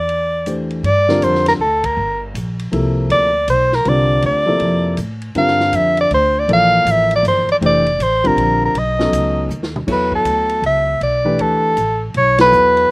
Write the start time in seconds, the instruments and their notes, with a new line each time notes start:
Already playing: upright bass E2, soprano saxophone D5
0.09 ride
0.46 grand piano E3 A3 D4 G4 C5, hi-hat pedal, ride
0.70 ride
0.83 upright bass G2, soprano saxophone D5, ride
1.08 grand piano D3 G3 C4 F4 A#4, snare
1.21 upright bass F2, soprano saxophone C5, hi-hat pedal, ride
1.35 snare
1.46 soprano saxophone A#4, snare, ride
1.59 upright bass D2, soprano saxophone A4
1.84 soprano saxophone A#4, kick, ride
1.97 upright bass G1
2.34 upright bass A#1, hi-hat pedal, ride
2.59 ride
2.71 upright bass C2, grand piano C3 F3 A#3 E4 A4, ride
3.10 upright bass D2, soprano saxophone D5, ride
3.48 upright bass B1, soprano saxophone C5, hi-hat pedal, ride
3.72 soprano saxophone A#4, snare
3.85 upright bass C2, grand piano D3 G3 C4 F4 A#4, soprano saxophone D5, ride
4.22 upright bass D2, soprano saxophone D5, ride
4.46 grand piano C3 F3 A#3 E4 A4
4.60 upright bass F2, ride
4.97 upright bass A2, hi-hat pedal, ride
5.22 ride
5.35 upright bass G2, grand piano D3 G3 C4 F4 A#4, soprano saxophone F5, ride
5.47 snare
5.60 snare
5.72 upright bass F2, soprano saxophone E5, hi-hat pedal, ride
5.97 soprano saxophone D5, ride
6.11 upright bass D2, soprano saxophone C5, ride
6.39 soprano saxophone D5
6.48 upright bass A#1, grand piano E3 F3 A#3 A4 D5, ride
6.53 soprano saxophone F5
6.85 upright bass A1, hi-hat pedal, ride
6.91 soprano saxophone E5
7.11 ride
7.16 soprano saxophone D5
7.23 upright bass G1, hi-hat pedal, ride
7.28 soprano saxophone C5
7.48 soprano saxophone D5, muted upright bass stroke, ride
7.61 upright bass F1, grand piano E3 A3 D4 G4 C5, ride
7.66 soprano saxophone D5
7.87 ride
7.99 upright bass A1, soprano saxophone C5, hi-hat pedal, ride
8.24 grand piano D3 G3 C4 F4 A#4, soprano saxophone A#4, kick, ride
8.36 upright bass A#1, ride
8.65 soprano saxophone A#4
8.74 upright bass B1, ride
8.79 soprano saxophone D#5
8.99 grand piano F#3 B3 C#4 D#4 A4, snare
9.12 upright bass C#2, hi-hat pedal, ride
9.49 upright bass D#2, hi-hat pedal
9.63 snare
9.76 mid tom
9.87 upright bass E2, grand piano F#3 B3 E4 A4 C#5, kick, crash
9.92 soprano saxophone B4
10.12 soprano saxophone A4, kick
10.25 upright bass D2, hi-hat pedal, ride
10.49 ride
10.62 upright bass C#2, ride
10.66 soprano saxophone E5
11.01 upright bass B1, soprano saxophone D5, ride
11.25 grand piano E3 A3 D4 G4 B4
11.39 upright bass D2, soprano saxophone A4, ride
11.77 upright bass A1, hi-hat pedal, ride
12.14 upright bass B1, soprano saxophone C#5, ride
12.38 grand piano F#3 B3 E4 A4 C#5, soprano saxophone B4, snare, ride
12.52 upright bass E2, hi-hat pedal
12.77 ride